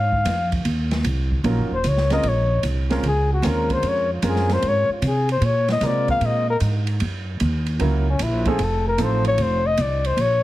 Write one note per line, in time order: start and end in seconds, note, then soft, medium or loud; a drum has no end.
0.00 0.24 G#2 medium
0.00 0.54 F5 medium
0.12 kick medium
0.25 0.64 F2 medium
0.25 snare soft
0.25 hi-hat pedal medium
0.25 ride medium
0.52 kick medium
0.52 ride medium
0.65 1.04 D#2 medium
0.65 ride medium
0.91 snare soft
0.91 ride soft
1.04 1.43 C2 medium
1.04 hi-hat pedal medium
1.04 ride medium
1.31 kick medium
1.44 1.59 A#1 medium
1.44 1.69 F#3 medium
1.44 1.69 C#4 medium
1.44 1.69 D#4 medium
1.44 1.69 F4 medium
1.44 1.69 A#4 medium
1.44 ride medium
1.57 1.71 F#1 medium
1.71 1.84 D#1 medium
1.71 1.89 C5 medium
1.84 2.23 C#2 medium
1.84 hi-hat pedal medium
1.84 ride medium
1.88 2.14 C#5 medium
1.97 snare soft
2.10 2.23 G#3 medium
2.10 2.23 C4 medium
2.10 2.23 C#4 medium
2.10 2.24 F4 medium
2.10 2.24 A#4 medium
2.10 2.30 D#5 loud
2.10 snare soft
2.10 ride medium
2.23 2.63 A#1 medium
2.23 ride medium
2.28 2.66 C#5 medium
2.63 3.02 C2 medium
2.63 hi-hat pedal medium
2.63 ride medium
2.90 3.02 G#3 medium
2.90 3.02 C4 medium
2.90 3.03 C#4 medium
2.90 3.03 F4 medium
2.90 3.03 A#4 medium
2.90 snare medium
2.90 ride soft
3.03 3.42 C#2 medium
3.03 ride medium
3.08 3.31 G#4 loud
3.33 3.48 F#4 medium
3.42 3.82 D#2 loud
3.42 4.04 G#3 medium
3.42 4.04 C4 medium
3.42 4.05 C#4 medium
3.42 4.05 F4 medium
3.42 4.05 A#4 medium
3.42 snare soft
3.42 hi-hat pedal medium
3.42 ride medium
3.47 3.75 A#4 medium
3.70 3.90 C5 loud
3.70 kick medium
3.70 ride soft
3.82 4.21 F2 medium
3.82 ride medium
3.88 4.13 C#5 medium
4.13 4.29 F4 medium
4.22 4.61 F#2 medium
4.22 4.84 G#3 medium
4.22 4.84 C4 medium
4.22 4.84 C#4 medium
4.22 4.84 F4 medium
4.22 4.84 A#4 medium
4.22 hi-hat pedal medium
4.22 ride medium
4.29 4.55 G#4 medium
4.36 snare soft
4.49 4.70 C5 loud
4.49 snare soft
4.49 ride soft
4.62 4.87 G#2 medium
4.62 ride medium
4.68 4.92 C#5 loud
4.89 5.08 F4 soft
4.89 muted upright bass stroke soft
5.02 5.40 C3 loud
5.02 hi-hat pedal medium
5.02 ride medium
5.07 5.31 G#4 medium
5.29 5.47 C5 medium
5.29 ride medium
5.41 5.80 A#2 medium
5.41 ride medium
5.45 5.70 C#5 medium
5.68 5.87 D#5 loud
5.68 snare medium
5.68 ride soft
5.81 6.20 C3 medium
5.81 6.43 G#3 medium
5.81 6.43 A#3 medium
5.81 6.43 C4 medium
5.81 6.43 F4 medium
5.81 6.43 A#4 medium
5.81 snare soft
5.81 hi-hat pedal medium
5.81 ride medium
5.86 6.10 D5 loud
6.08 6.27 F5 loud
6.08 kick medium
6.08 ride soft
6.21 6.60 A#2 medium
6.21 ride medium
6.26 6.50 D#5 loud
6.50 6.57 A#4 loud
6.60 6.99 G#2 medium
6.60 hi-hat pedal medium
6.60 ride medium
6.87 ride medium
7.00 7.39 F#2 medium
7.00 ride medium
7.40 7.79 D#2 loud
7.40 hi-hat pedal soft
7.40 ride medium
7.66 ride soft
7.79 8.19 C#2 medium
7.79 8.04 F#3 medium
7.79 8.04 A#3 medium
7.79 8.04 C#4 soft
7.79 8.04 E4 soft
7.79 8.04 A#4 medium
7.79 ride medium
8.09 8.24 C#4 medium
8.19 8.58 A#1 loud
8.19 8.49 E4 medium
8.19 hi-hat pedal medium
8.19 ride medium
8.45 8.58 F3 medium
8.45 8.58 A3 medium
8.45 8.58 C4 medium
8.45 8.58 D#4 medium
8.45 8.65 G#4 medium
8.45 8.59 A4 medium
8.45 kick medium
8.45 ride medium
8.59 8.97 F1 medium
8.59 ride medium
8.64 8.87 A4 medium
8.88 9.05 A#4 medium
8.98 9.37 A1 loud
8.98 9.59 F3 medium
8.98 9.59 A3 medium
8.98 9.60 C4 medium
8.98 9.60 D#4 medium
8.98 9.60 A4 medium
8.98 hi-hat pedal medium
8.98 ride medium
9.03 9.27 C5 medium
9.25 9.44 C#5 loud
9.25 ride soft
9.38 9.77 F1 medium
9.38 ride medium
9.43 9.68 C5 loud
9.66 9.83 D#5 loud
9.77 10.16 C2 medium
9.77 10.08 D5 medium
9.77 hi-hat pedal medium
9.77 ride medium
10.04 10.23 C5 loud
10.04 ride soft
10.17 10.43 A#1 medium
10.17 ride medium
10.21 10.43 C#5 loud